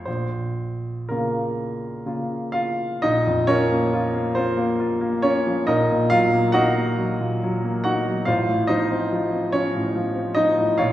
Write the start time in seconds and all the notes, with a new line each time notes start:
0.05 A#1 C5
1.09 C#3 A#3 F4 A#4
2.06 C#3 A#3 F4
2.52 F4 F5
3.02 A#1 D#4 D#5
3.27 F2
3.47 F3 C#4 A#4 C#5
3.72 A#3
3.94 F4
4.14 A#3
4.35 C4 F4 C5
4.57 A#3
4.80 F4
5.01 A#3
5.22 C#4 F4 C#5
5.47 F3
5.67 A#1 D#4 A#4 D#5
5.91 A#2
6.10 F#3 F4 F5
6.33 A#3
6.52 D#4 F#4 D#5 F#5
6.78 A#3
6.98 F#3
7.21 A#2
7.44 F#3
7.64 A#3
7.84 D#4 F#4 F#5
8.07 F#3
8.25 A1 F4 C5 F5
8.49 A2
8.67 F3 D#4 C5 D#5
8.91 C4
9.12 F3
9.32 C4
9.52 F3 C#4 C#5
9.76 A2
9.96 F3
10.16 C4
10.35 F3 D#4 D#5
10.58 A2
10.78 A#1 F4 C#5 F5